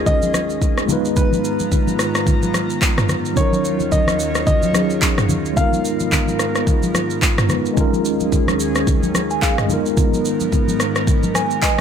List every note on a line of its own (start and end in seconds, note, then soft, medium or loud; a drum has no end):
0.00 0.87 D#2 medium
0.00 7.73 D#3 medium
0.00 0.83 G#3 medium
0.00 0.84 C#4 medium
0.00 0.87 C#4 medium
0.00 0.85 D#4 medium
0.00 0.86 F4 medium
0.00 0.87 F4 medium
0.00 0.87 G#4 medium
0.00 0.87 A#4 medium
0.00 impact medium
0.06 1.12 D#5 loud
0.06 kick loud
0.06 low conga medium
0.06 shaker medium
0.22 high conga medium
0.22 shaker medium
0.34 cross-stick loud
0.34 high conga medium
0.34 shaker medium
0.50 shaker soft
0.62 kick loud
0.62 shaker medium
0.78 cross-stick medium
0.78 shaker medium
0.85 3.34 G#2 medium
0.85 3.03 G#3 medium
0.85 3.04 B3 medium
0.85 3.34 B3 medium
0.85 3.05 D#4 medium
0.85 11.81 F4 medium
0.85 3.34 A#5 medium
0.85 high conga medium
0.85 low conga medium
0.85 shaker medium
0.91 3.06 F4 medium
0.91 3.07 B4 medium
1.05 shaker soft
1.16 2.23 B4 medium
1.16 kick loud
1.16 low conga medium
1.16 shaker medium
1.33 high conga medium
1.33 shaker soft
1.44 shaker medium
1.59 high conga medium
1.59 shaker medium
1.72 kick medium
1.72 low conga medium
1.72 shaker medium
1.87 high conga medium
1.87 shaker medium
1.99 cross-stick medium
1.99 shaker medium
2.15 cross-stick medium
2.15 shaker medium
2.27 kick loud
2.27 low conga medium
2.27 shaker medium
2.42 high conga medium
2.42 shaker medium
2.54 cross-stick loud
2.54 high conga medium
2.54 shaker loud
2.70 shaker soft
2.82 kick loud
2.82 clap loud
2.82 shaker medium
2.98 cross-stick medium
2.98 mid tom medium
2.98 shaker medium
3.09 cross-stick medium
3.09 high conga medium
3.09 low conga medium
3.09 shaker medium
3.25 shaker soft
3.33 5.55 D#2 medium
3.33 4.70 F#3 medium
3.33 5.55 F#3 medium
3.33 4.71 C#4 medium
3.33 4.72 D#4 medium
3.33 3.93 C#5 medium
3.33 5.55 C#5 medium
3.33 kick loud
3.33 low conga medium
3.33 shaker medium
3.39 4.73 F4 medium
3.39 4.73 A#4 medium
3.53 high conga medium
3.53 shaker soft
3.65 shaker medium
3.80 high conga medium
3.80 shaker medium
3.92 4.45 D#5 medium
3.92 kick medium
3.92 low conga medium
3.92 shaker medium
4.07 cross-stick medium
4.07 high conga medium
4.07 shaker medium
4.19 shaker medium
4.35 cross-stick medium
4.35 shaker medium
4.47 5.60 D#5 loud
4.47 kick loud
4.47 low conga medium
4.47 shaker medium
4.63 high conga medium
4.63 shaker soft
4.73 5.56 F#3 soft
4.73 5.57 C#4 soft
4.73 5.56 D#4 soft
4.73 5.57 F4 soft
4.73 5.58 G#4 medium
4.73 cross-stick loud
4.73 high conga medium
4.73 shaker loud
4.90 shaker medium
5.02 kick medium
5.02 clap loud
5.02 shaker medium
5.18 cross-stick medium
5.18 mid tom medium
5.18 shaker medium
5.29 high conga medium
5.29 low conga medium
5.29 shaker medium
5.45 shaker soft
5.53 7.75 G#2 medium
5.53 7.44 G#3 medium
5.53 7.45 B3 medium
5.53 7.75 B3 medium
5.53 7.46 D#4 medium
5.53 7.75 A#4 medium
5.53 6.63 F5 loud
5.53 kick loud
5.53 low conga medium
5.53 shaker medium
5.59 7.47 F4 medium
5.59 7.48 A#4 medium
5.73 high conga medium
5.73 shaker soft
5.85 shaker medium
6.00 high conga medium
6.00 shaker medium
6.12 kick medium
6.12 clap medium
6.12 low conga medium
6.12 shaker medium
6.28 high conga medium
6.28 shaker medium
6.39 cross-stick medium
6.39 shaker medium
6.55 cross-stick medium
6.55 shaker medium
6.67 kick loud
6.67 low conga medium
6.67 shaker medium
6.83 high conga medium
6.83 shaker medium
6.94 cross-stick loud
6.94 high conga medium
6.94 shaker loud
7.10 shaker soft
7.22 kick loud
7.22 clap loud
7.22 shaker medium
7.38 cross-stick loud
7.38 mid tom medium
7.38 shaker medium
7.48 7.72 G#3 medium
7.48 7.77 B3 medium
7.48 7.76 D#4 medium
7.48 7.78 F4 medium
7.48 7.78 B4 medium
7.48 cross-stick medium
7.48 high conga medium
7.48 low conga medium
7.48 shaker medium
7.66 shaker soft
7.74 9.68 D#2 medium
7.74 11.81 D#3 medium
7.74 9.64 G#3 medium
7.74 9.65 C#4 medium
7.74 9.68 C#4 medium
7.74 9.66 D#4 medium
7.74 9.68 G#4 medium
7.74 kick loud
7.74 low conga medium
7.74 shaker medium
7.79 9.67 F4 medium
7.79 9.14 A#4 medium
7.93 high conga medium
7.93 shaker soft
8.05 shaker medium
8.20 high conga medium
8.20 shaker medium
8.32 kick medium
8.32 low conga medium
8.32 shaker medium
8.48 cross-stick medium
8.48 high conga medium
8.48 shaker medium
8.60 shaker medium
8.75 cross-stick medium
8.75 shaker medium
8.87 kick loud
8.87 low conga medium
8.87 shaker medium
9.03 high conga medium
9.03 shaker soft
9.15 cross-stick loud
9.15 high conga medium
9.15 shaker loud
9.30 9.42 G#5 medium
9.30 shaker soft
9.42 9.58 G#4 medium
9.42 9.57 F5 medium
9.42 kick loud
9.42 clap medium
9.42 shaker medium
9.58 9.84 D#5 medium
9.58 cross-stick loud
9.58 mid tom loud
9.58 shaker medium
9.66 11.81 G#2 medium
9.66 11.81 G#3 medium
9.66 11.81 B3 medium
9.66 11.81 D#4 medium
9.66 11.81 A#4 medium
9.66 high conga medium
9.66 low conga medium
9.66 shaker medium
9.72 11.81 F4 medium
9.72 11.60 A#4 medium
9.86 shaker soft
9.97 kick loud
9.97 low conga medium
9.97 shaker medium
10.13 high conga medium
10.13 shaker soft
10.25 shaker medium
10.40 high conga medium
10.40 shaker medium
10.52 kick medium
10.52 low conga medium
10.52 shaker medium
10.68 high conga medium
10.68 shaker medium
10.80 cross-stick medium
10.80 shaker medium
10.96 cross-stick medium
10.96 shaker medium
11.07 kick loud
11.07 low conga medium
11.07 shaker medium
11.23 high conga medium
11.23 shaker medium
11.35 11.61 G#5 medium
11.35 cross-stick loud
11.35 high conga medium
11.35 shaker loud
11.51 shaker medium
11.62 11.81 B4 medium
11.62 11.81 D#5 medium
11.62 11.81 G#5 medium
11.62 kick loud
11.62 clap medium
11.62 shaker medium